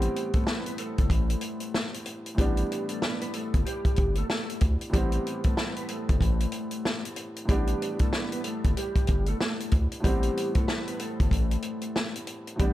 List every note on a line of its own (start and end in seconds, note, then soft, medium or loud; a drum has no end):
0.00 2.32 A2 medium
0.00 2.33 E3 medium
0.00 0.31 G3 medium
0.00 2.34 G3 medium
0.00 2.35 B3 medium
0.00 2.35 C4 medium
0.00 0.31 G4 medium
0.00 closed hi-hat medium
0.16 closed hi-hat medium
0.33 0.46 A3 medium
0.33 0.46 A4 medium
0.33 kick loud
0.33 closed hi-hat medium
0.46 0.64 B3 medium
0.46 0.64 B4 medium
0.46 snare loud
0.66 0.78 B3 medium
0.66 0.78 B4 medium
0.66 closed hi-hat soft
0.78 1.90 A3 medium
0.78 1.90 A4 medium
0.78 closed hi-hat medium
0.98 1.08 G1 medium
0.98 kick medium
0.98 closed hi-hat soft
1.10 1.36 A1 loud
1.10 kick loud
1.10 closed hi-hat medium
1.30 closed hi-hat medium
1.41 closed hi-hat medium
1.60 closed hi-hat soft
1.74 snare loud
1.94 closed hi-hat medium
2.06 closed hi-hat medium
2.26 closed hi-hat soft
2.35 2.64 A1 loud
2.35 4.88 A2 medium
2.35 4.89 E3 medium
2.35 4.89 G3 medium
2.35 2.86 G4 loud
2.35 kick loud
2.39 2.87 G3 medium
2.39 4.90 B3 medium
2.39 4.91 D4 medium
2.39 closed hi-hat loud
2.57 closed hi-hat medium
2.72 closed hi-hat medium
2.89 3.01 A3 medium
2.89 3.01 A4 medium
2.89 closed hi-hat medium
3.02 3.20 B3 medium
3.02 3.20 B4 medium
3.02 snare loud
3.21 3.33 B3 medium
3.21 3.32 B4 medium
3.21 closed hi-hat medium
3.33 3.63 A3 medium
3.33 3.63 A4 medium
3.33 closed hi-hat medium
3.54 3.64 G1 medium
3.54 kick medium
3.54 closed hi-hat medium
3.65 4.14 G3 medium
3.65 4.14 G4 medium
3.65 closed hi-hat medium
3.85 kick medium
3.85 closed hi-hat medium
3.96 4.23 G1 medium
3.96 kick loud
3.96 closed hi-hat medium
4.15 4.29 A3 medium
4.15 4.28 A4 medium
4.15 closed hi-hat soft
4.30 4.59 A3 medium
4.30 4.58 A4 medium
4.30 snare loud
4.50 closed hi-hat medium
4.61 4.77 D2 medium
4.61 kick medium
4.61 closed hi-hat medium
4.81 closed hi-hat soft
4.90 5.19 A1 loud
4.90 7.43 A2 medium
4.90 7.44 E3 medium
4.90 7.44 G3 medium
4.90 5.42 G4 loud
4.94 5.42 G3 medium
4.94 7.45 B3 medium
4.94 7.46 C4 medium
4.94 kick loud
4.94 closed hi-hat loud
5.12 closed hi-hat medium
5.27 closed hi-hat medium
5.44 5.57 A3 medium
5.44 5.56 A4 medium
5.44 kick loud
5.44 closed hi-hat medium
5.57 5.75 B3 medium
5.57 5.75 B4 medium
5.57 snare loud
5.76 5.89 B3 medium
5.76 5.88 B4 medium
5.76 closed hi-hat soft
5.88 7.01 A3 medium
5.88 7.01 A4 medium
5.88 closed hi-hat medium
6.09 6.19 G1 medium
6.09 kick loud
6.09 closed hi-hat soft
6.21 6.46 A1 loud
6.21 kick loud
6.21 closed hi-hat medium
6.40 closed hi-hat medium
6.52 closed hi-hat medium
6.71 closed hi-hat soft
6.85 snare loud
7.05 closed hi-hat medium
7.16 closed hi-hat medium
7.36 closed hi-hat soft
7.45 7.74 A1 loud
7.45 9.98 A2 medium
7.45 9.99 E3 medium
7.45 10.00 G3 medium
7.45 kick loud
7.45 closed hi-hat loud
7.50 7.98 G3 medium
7.50 10.01 B3 medium
7.50 10.02 D4 medium
7.50 7.98 G4 loud
7.67 closed hi-hat medium
7.82 closed hi-hat medium
7.99 8.12 A3 medium
7.99 8.12 A4 medium
7.99 kick loud
7.99 closed hi-hat medium
8.13 8.31 B3 medium
8.13 8.30 B4 medium
8.13 snare loud
8.32 8.44 B3 medium
8.32 8.43 B4 medium
8.32 closed hi-hat soft
8.44 8.74 A3 medium
8.44 8.74 A4 medium
8.44 closed hi-hat medium
8.64 8.74 G1 medium
8.64 kick loud
8.64 closed hi-hat medium
8.77 9.25 G3 medium
8.77 9.25 G4 medium
8.77 closed hi-hat medium
8.96 kick loud
8.96 closed hi-hat medium
9.07 9.34 G1 medium
9.07 kick loud
9.07 closed hi-hat medium
9.26 9.40 A3 medium
9.26 9.39 A4 medium
9.26 closed hi-hat soft
9.40 9.69 A3 medium
9.40 9.69 A4 medium
9.40 snare loud
9.60 closed hi-hat medium
9.71 9.88 D2 medium
9.71 kick medium
9.71 closed hi-hat medium
9.92 closed hi-hat soft
10.00 12.53 A2 medium
10.00 12.54 E3 medium
10.00 12.55 G3 medium
10.00 10.52 G4 medium
10.04 10.30 A1 loud
10.04 10.53 G3 medium
10.04 12.56 B3 medium
10.04 12.57 C4 medium
10.04 kick loud
10.04 closed hi-hat loud
10.23 closed hi-hat medium
10.37 closed hi-hat medium
10.55 10.68 A3 medium
10.55 10.67 A4 medium
10.55 kick loud
10.55 closed hi-hat medium
10.68 10.86 B3 medium
10.68 10.85 B4 medium
10.68 snare loud
10.88 10.99 B3 medium
10.88 10.99 B4 medium
10.88 closed hi-hat soft
10.99 12.11 A3 medium
10.99 12.11 A4 medium
10.99 closed hi-hat medium
11.20 11.30 G1 medium
11.20 kick loud
11.20 closed hi-hat medium
11.31 11.57 A1 loud
11.31 kick loud
11.31 closed hi-hat medium
11.51 closed hi-hat medium
11.62 closed hi-hat medium
11.81 closed hi-hat soft
11.96 snare loud
12.15 closed hi-hat medium
12.27 closed hi-hat medium
12.47 closed hi-hat soft
12.56 12.73 A1 loud
12.56 12.73 A2 medium
12.56 12.73 E3 medium
12.56 12.73 G3 medium
12.56 12.73 G4 loud
12.56 kick loud
12.56 closed hi-hat loud
12.60 12.73 G3 medium
12.60 12.73 B3 medium
12.60 12.73 D4 medium